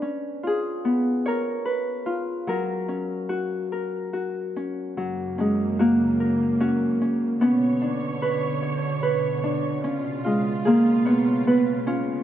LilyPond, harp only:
<<
  \new Staff \with { instrumentName = "Harp" } { \time 3/4 \key fis \major \tempo 4 = 74 cis'8 eis'8 b8 cis''8 b'8 eis'8 | fis8 cis'8 fis'8 ais'8 fis'8 cis'8 | fis8 cis'8 fis'8 ais'8 fis'8 cis'8 | cis'8 d'8 b'8 cis''8 b'8 d'8 |
cis'8 eis'8 gis'8 cis''8 b'8 eis'8 | }
  \new Staff \with { instrumentName = "Harp" } { \time 3/4 \key fis \major r8 gis'4 ais'8 r4 | ais'2 r4 | r8 gis8 ais4 cis'4 | b4. r4. |
r8 gis8 ais8 b8 b8 cis'8 | }
>>